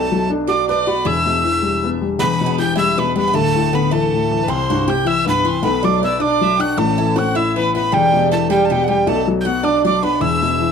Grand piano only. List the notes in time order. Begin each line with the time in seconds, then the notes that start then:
Already playing: B1 B2
0.12 F#3
0.30 D4
0.48 F#4
0.69 B4
0.87 F#4
1.05 E1 E2
1.26 B2
1.44 E3
1.62 G3
1.84 B3
2.01 G3
2.19 E1 E2
2.41 B2
2.58 E3
2.76 G3
2.98 B2
3.16 G3
3.34 D1 D2
3.55 A2
3.73 D3
3.92 E3
4.13 A2
4.31 E3
4.48 C2
4.70 G2
4.88 C3
5.05 E3
5.27 G2
5.44 E3
5.62 B1 B2
5.84 F#3
6.01 B3
6.19 D4
6.41 F#3
6.59 D4
6.77 A1 A2
6.99 E3
7.16 C4
7.34 E4
7.56 E3
7.75 E4
7.93 E1 E2
8.13 B2
8.32 E3
8.49 G3
8.71 B2
8.89 G3
9.07 B1 B2
9.27 F#3
9.45 B3
9.63 D4
9.85 F#3
10.03 D4
10.20 E1 E2
10.43 B2
10.60 E3